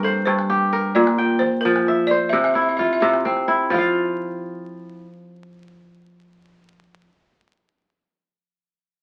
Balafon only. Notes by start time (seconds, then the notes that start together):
0.03 A4
0.26 C5
0.95 D5
1.39 C5
1.61 A#4
2.07 D5
2.29 E5
2.38 E5
2.45 E5
2.54 E5
2.62 E5
2.69 E5
2.77 E5
2.85 E5
2.93 E5
3.00 E5
3.08 E5
3.72 F5